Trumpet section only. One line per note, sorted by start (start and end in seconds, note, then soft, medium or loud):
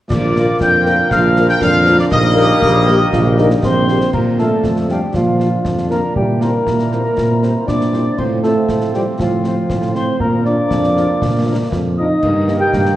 0.10 0.57 D5 medium
0.61 1.12 G5 loud
1.11 1.49 F5 medium
1.50 1.61 G5 loud
1.61 1.97 F5 loud
1.99 2.05 D5 loud
2.11 3.84 D#5 loud
4.39 4.48 F5 soft
4.90 4.99 F5 soft
5.41 5.50 F5 soft
5.91 6.00 F5 soft
6.41 6.50 C5 soft
6.92 7.01 C5 soft
7.43 7.52 C5 soft
7.92 8.02 C5 soft
8.43 8.52 C5 soft
8.94 9.03 C5 soft
9.45 9.54 C5 soft
9.95 10.04 C5 soft
10.46 10.55 A#4 soft
10.97 11.06 A#4 soft
11.48 11.57 A#4 soft
11.98 12.07 A#4 soft
12.49 12.58 A#4 soft